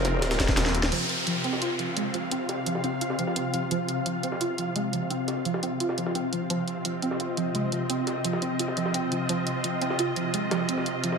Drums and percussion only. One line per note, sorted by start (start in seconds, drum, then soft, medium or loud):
0.05 snare soft
0.05 closed hi-hat medium
0.22 snare loud
0.22 closed hi-hat medium
0.22 closed hi-hat loud
0.31 snare loud
0.31 closed hi-hat medium
0.40 kick medium
0.40 snare loud
0.40 snare medium
0.40 closed hi-hat medium
0.48 kick loud
0.48 snare medium
0.48 closed hi-hat soft
0.57 snare loud
0.57 snare medium
0.57 closed hi-hat medium
0.57 closed hi-hat loud
0.66 snare medium
0.66 closed hi-hat soft
0.74 closed hi-hat medium
0.83 snare medium
0.92 closed hi-hat medium
0.92 crash medium
1.09 closed hi-hat medium
1.27 closed hi-hat medium
1.36 closed hi-hat soft
1.44 closed hi-hat medium
1.53 snare soft
1.62 closed hi-hat medium
1.79 closed hi-hat medium
1.97 closed hi-hat medium
2.14 closed hi-hat medium
2.31 closed hi-hat medium
2.49 snare soft
2.49 closed hi-hat medium
2.66 closed hi-hat medium
2.75 snare medium
2.84 closed hi-hat medium
3.01 closed hi-hat medium
3.10 snare soft
3.19 closed hi-hat medium
3.27 snare soft
3.36 closed hi-hat medium
3.45 closed hi-hat soft
3.54 closed hi-hat medium
3.71 closed hi-hat medium
3.88 closed hi-hat medium
4.06 closed hi-hat medium
4.15 closed hi-hat soft
4.23 closed hi-hat medium
4.32 snare soft
4.41 closed hi-hat medium
4.58 closed hi-hat medium
4.76 closed hi-hat medium
4.93 closed hi-hat medium
5.11 closed hi-hat medium
5.28 snare soft
5.28 closed hi-hat medium
5.45 closed hi-hat medium
5.54 snare medium
5.63 closed hi-hat medium
5.80 closed hi-hat medium
5.89 snare soft
5.98 closed hi-hat medium
6.06 snare soft
6.15 closed hi-hat medium
6.24 closed hi-hat soft
6.33 closed hi-hat medium
6.50 closed hi-hat medium
6.67 closed hi-hat medium
6.85 closed hi-hat medium
6.94 closed hi-hat soft
7.02 closed hi-hat medium
7.11 snare soft
7.20 closed hi-hat medium
7.37 closed hi-hat medium
7.55 closed hi-hat medium
7.72 closed hi-hat medium
7.90 closed hi-hat medium
8.07 snare soft
8.07 closed hi-hat medium
8.24 closed hi-hat medium
8.33 snare soft
8.42 closed hi-hat medium
8.59 closed hi-hat medium
8.68 snare soft
8.77 closed hi-hat medium
8.86 snare soft
8.94 closed hi-hat medium
9.03 closed hi-hat soft
9.12 closed hi-hat medium
9.29 closed hi-hat medium
9.47 closed hi-hat medium
9.64 closed hi-hat medium
9.73 closed hi-hat soft
9.82 closed hi-hat medium
9.90 snare soft
9.99 closed hi-hat medium
10.16 closed hi-hat medium
10.34 closed hi-hat medium
10.51 snare loud
10.51 closed hi-hat medium
10.60 closed hi-hat soft
10.69 closed hi-hat medium
10.77 snare soft
10.86 closed hi-hat medium
11.04 closed hi-hat medium
11.12 snare medium